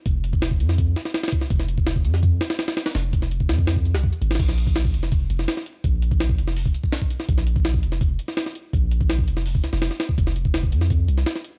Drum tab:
CC |--------------------------------|--------------------------------|--------------------------------|x-------------------------------|
HH |x---x---x---x---x---x---x-xxx---|x---x---x---x---x---x-x-x-x-x-x-|x---x---x---x---x---x-x---x-x-xx|x---x---x---x---x---x---x---x---|
SD |--------o-----o-----o-o-o-oo--o-|--o-----o-----o-----o-o-o-o-o-o-|o-----o-----o---o-----o-------oo|--o-----o-----o-------o-o-o-----|
BD |o-----o---o-----o-----------o---|o-----o---o-----o---------------|----o-----o---o---o-----o-------|o-----o---o-----o---------------|

CC |--------------------------------|--------------------------------|--------------------------------|--------------------------------|
HH |x---x---x---x---o---x---x---x---|x---x---x---x---x---x---x---x---|x---x---x---x---o---x---x---x---|x---x---x---x---x---x---x---x---|
SD |--------o-----o---------o-----o-|--o-----o-----o-------o-o-o-----|--------o-----o-----o-o-o-o-o---|--o-----o-----o-------o-o-o-----|
BD |o-----o---o-------o---o---o-----|o-----o---o-----o---------------|o-----o---o-------o-----------o-|o-----o---o-----o---------------|